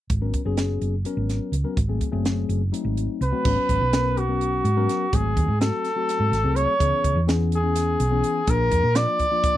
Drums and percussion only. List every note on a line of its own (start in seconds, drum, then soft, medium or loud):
0.10 kick medium
0.10 closed hi-hat medium
0.34 kick medium
0.34 closed hi-hat soft
0.57 snare medium
0.57 closed hi-hat medium
0.81 closed hi-hat soft
1.05 closed hi-hat medium
1.29 snare soft
1.29 closed hi-hat soft
1.53 closed hi-hat medium
1.77 kick medium
1.77 closed hi-hat medium
2.01 kick medium
2.01 closed hi-hat medium
2.25 snare medium
2.25 closed hi-hat medium
2.50 closed hi-hat soft
2.74 closed hi-hat medium
2.97 closed hi-hat soft
3.22 closed hi-hat soft
3.45 kick medium
3.45 crash medium
3.69 kick medium
3.69 closed hi-hat medium
3.93 snare medium
3.93 closed hi-hat medium
4.17 closed hi-hat soft
4.41 closed hi-hat medium
4.65 closed hi-hat medium
4.89 snare soft
4.89 closed hi-hat medium
5.13 kick medium
5.13 closed hi-hat medium
5.37 kick medium
5.37 closed hi-hat medium
5.61 snare loud
5.61 closed hi-hat medium
5.84 snare soft
5.84 closed hi-hat medium
6.09 snare soft
6.09 closed hi-hat medium
6.33 snare soft
6.33 closed hi-hat medium
6.56 closed hi-hat medium
6.80 kick medium
6.80 closed hi-hat medium
7.04 kick medium
7.04 closed hi-hat medium
7.29 snare medium
7.29 closed hi-hat medium
7.52 closed hi-hat medium
7.76 snare soft
7.76 closed hi-hat medium
8.00 closed hi-hat medium
8.24 closed hi-hat medium
8.47 kick medium
8.47 closed hi-hat medium
8.71 kick medium
8.71 closed hi-hat medium
8.95 snare loud
8.95 closed hi-hat medium
9.19 kick medium
9.19 closed hi-hat medium
9.43 kick loud
9.43 closed hi-hat medium